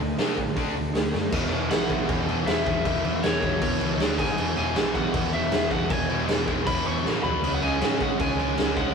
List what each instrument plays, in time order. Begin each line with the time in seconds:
0.00 picked electric bass D2, distorted electric guitar D3 A3 D4
0.17 picked electric bass B2, distorted electric guitar D3 A3 D4, snare, open hi-hat
0.38 picked electric bass A2, distorted electric guitar D3 A3 D4, kick
0.57 picked electric bass B1, distorted electric guitar D3 A3 D4, kick, open hi-hat
0.75 picked electric bass D2, distorted electric guitar D3 A3 D4
0.94 picked electric bass D2, distorted electric guitar D3 A3 D4, snare, open hi-hat
1.14 picked electric bass F#2, distorted electric guitar D3 A3 D4, snare
1.32 picked electric bass E1, distorted electric guitar E2 B2 E3, kick, crash
1.51 picked electric bass E1, distorted electric guitar E2 B2 E3, crash
1.70 picked electric bass B1, distorted electric guitar E2 B2 E3, overdriven electric guitar F#5, snare, crash
1.90 picked electric bass B1, distorted electric guitar E2 B2 E3, kick, crash
2.08 picked electric bass E1, distorted electric guitar E2 B2 E3, kick, crash
2.27 picked electric bass E1, distorted electric guitar E2 B2 E3, crash
2.46 picked electric bass E1, distorted electric guitar E2 B2 E3, overdriven electric guitar E5, snare, crash
2.66 picked electric bass E1, distorted electric guitar E2 B2 E3, kick, crash
2.84 picked electric bass E1, distorted electric guitar E2 B2 E3, kick, crash
3.04 picked electric bass E1, distorted electric guitar E2 B2 E3, crash
3.23 picked electric bass E1, distorted electric guitar E2 B2 E3, overdriven electric guitar C#5, snare, crash
3.43 picked electric bass E1, distorted electric guitar E2 B2 E3, kick, crash
3.61 picked electric bass E1, distorted electric guitar E2 B2 E3, kick, crash
3.81 picked electric bass C#2, distorted electric guitar E2 B2 E3, crash
4.00 picked electric bass D2, distorted electric guitar D3 A3 D4, snare, crash
4.18 picked electric bass G#1, distorted electric guitar G#2 D#3 G#3, overdriven electric guitar G#5, kick, crash
4.38 picked electric bass E1, distorted electric guitar E2 B2 E3, crash
4.57 picked electric bass E1, distorted electric guitar E2 B2 E3, overdriven electric guitar G#5, crash
4.75 picked electric bass B1, distorted electric guitar E2 B2 E3, snare, crash
4.95 picked electric bass B1, distorted electric guitar E2 B2 E3, overdriven electric guitar F#5, kick, crash
5.13 picked electric bass E1, distorted electric guitar E2 B2 E3, kick, crash
5.32 picked electric bass E1, distorted electric guitar E2 B2 E3, overdriven electric guitar E5, crash
5.51 picked electric bass E1, distorted electric guitar E2 B2 E3, snare, crash
5.71 picked electric bass E1, distorted electric guitar E2 B2 E3, overdriven electric guitar F#5, kick, crash
5.90 picked electric bass E1, distorted electric guitar E2 B2 E3, overdriven electric guitar G#5, kick, crash
6.09 picked electric bass E1, distorted electric guitar E2 B2 E3, crash
6.28 picked electric bass E1, distorted electric guitar E2 B2 E3, snare, crash
6.47 picked electric bass E1, distorted electric guitar E2 B2 E3, kick, crash
6.66 picked electric bass E1, distorted electric guitar E2 B2 E3, overdriven electric guitar B5, kick, crash
6.85 picked electric bass E1, distorted electric guitar E2 B2 E3, overdriven electric guitar C#6, crash
7.04 picked electric bass A1, distorted electric guitar E2 B2 E3, snare
7.23 picked electric bass B1, distorted electric guitar B2 F#3 B3, overdriven electric guitar B5, floor tom
7.42 picked electric bass C#2, distorted electric guitar C#3 G#3 C#4, crash
7.55 overdriven electric guitar F#5
7.61 picked electric bass C#2, distorted electric guitar C#3 G#3 C#4, overdriven electric guitar G#5, crash
7.80 picked electric bass G#2, distorted electric guitar C#3 G#3 C#4, snare, crash
8.00 picked electric bass G#1, distorted electric guitar C#3 G#3 C#4, overdriven electric guitar F#5, kick, crash
8.18 picked electric bass C#2, distorted electric guitar C#3 G#3 C#4, overdriven electric guitar G#5, kick, crash
8.38 picked electric bass C#2, distorted electric guitar C#3 G#3 C#4, crash
8.58 picked electric bass C#2, distorted electric guitar C#3 G#3 C#4, snare, crash
8.76 picked electric bass C#2, distorted electric guitar C#3 G#3 C#4, overdriven electric guitar F#5, kick, crash